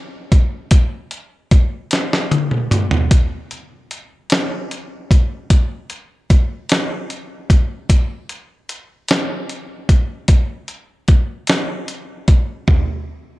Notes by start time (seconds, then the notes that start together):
0.32 kick, closed hi-hat
0.71 kick, closed hi-hat
1.11 closed hi-hat
1.51 kick, closed hi-hat
1.91 snare, closed hi-hat
2.13 snare
2.31 closed hi-hat, high tom
2.51 mid tom
2.71 closed hi-hat, mid tom
2.91 floor tom
3.11 kick, closed hi-hat
3.51 closed hi-hat
3.91 closed hi-hat
4.30 snare, closed hi-hat
4.71 closed hi-hat
5.11 kick, closed hi-hat
5.50 kick, closed hi-hat
5.90 closed hi-hat
6.30 kick, closed hi-hat
6.69 snare, closed hi-hat
7.10 closed hi-hat
7.50 kick, closed hi-hat
7.90 kick, closed hi-hat
8.29 closed hi-hat
8.69 closed hi-hat
9.09 snare, closed hi-hat
9.49 closed hi-hat
9.89 kick, closed hi-hat
10.28 kick, closed hi-hat
10.68 closed hi-hat
11.08 kick, closed hi-hat
11.47 snare, closed hi-hat
11.88 closed hi-hat
12.28 kick, closed hi-hat
12.68 kick, floor tom